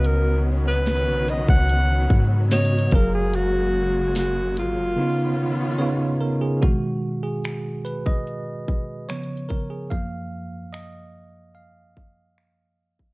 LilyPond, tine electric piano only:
<<
  \new Staff \with { instrumentName = "Tine electric piano" } { \time 4/4 \key fis \major \tempo 4 = 73 r1 | r2. cis''8 ais'16 gis'16 | fis'8. gis'8. b'16 dis''4 r16 cis''8 ais'16 gis'16 | eis''4 dis''4 eis''4. r8 | }
  \new Staff \with { instrumentName = "Tine electric piano" } { \time 4/4 \key fis \major <cis b fis' dis''>4 r2 <cis b fis' dis''>8 <fis gis' ais' eis''>8~ | <fis gis' ais' eis''>4 r4 <cis b dis' eis'>4 <cis b dis' eis'>4 | <b, dis gis>2. <cis eis b>4 | <fis, eis ais>8 r2. r8 | }
>>